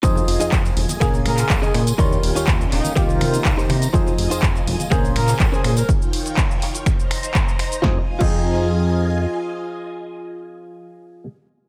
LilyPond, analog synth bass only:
\new Staff \with { instrumentName = "Analog synth bass" } { \clef bass \time 4/4 \key f \minor \tempo 4 = 123 f,16 r16 f,,16 f,16 f,16 r16 f,,16 r16 bes,,8 bes,16 r16 bes,,16 r16 bes,16 r16 | ees,16 r16 ees,,16 ees,16 ees,16 r16 ees,,16 r16 c,8 c16 r16 c,16 r16 c16 r16 | f,16 r16 f,,16 f,16 f,16 r16 f,,16 r16 bes,,8 bes,16 r16 bes,,16 r16 bes,16 r16 | r1 |
f,16 r8 f,2~ f,16 r4 | r1 | }